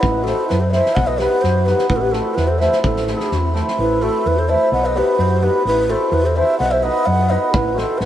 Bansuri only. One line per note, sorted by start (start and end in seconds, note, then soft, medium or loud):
0.00 0.24 E4 medium
0.23 0.46 F#4 medium
0.46 0.62 E4 medium
0.60 0.72 A4 medium
0.71 0.96 C5 medium
0.94 1.09 D#5 medium
1.07 1.20 B4 medium
1.18 1.45 G4 medium
1.43 1.68 F#4 medium
1.66 1.87 G4 medium
1.88 1.97 E4 medium
1.96 2.02 F#4 medium
2.01 2.14 G4 medium
2.12 2.37 F#4 medium
2.35 2.51 E4 medium
2.49 2.62 A4 medium
2.60 2.82 C5 medium
2.82 3.50 E4 medium
3.79 4.05 E4 loud
4.03 4.28 F#4 medium
4.26 4.39 E4 medium
4.38 4.51 A4 medium
4.49 4.71 C5 medium
4.72 4.86 D#5 loud
4.84 4.98 B4 medium
4.96 5.20 G4 medium
5.18 5.44 F#4 medium
5.42 5.66 G4 medium
5.67 5.90 E4 medium
5.89 6.13 F#4 medium
6.12 6.26 E4 medium
6.24 6.38 A4 medium
6.37 6.60 C5 medium
6.60 6.74 D#5 loud
6.73 6.85 C5 medium
6.84 7.08 B4 medium
7.07 7.32 D#5 medium
7.31 7.53 B4 medium
7.52 7.76 E4 medium
7.74 7.99 F#4 medium
7.98 8.05 E4 medium
7.98 8.01 A4 medium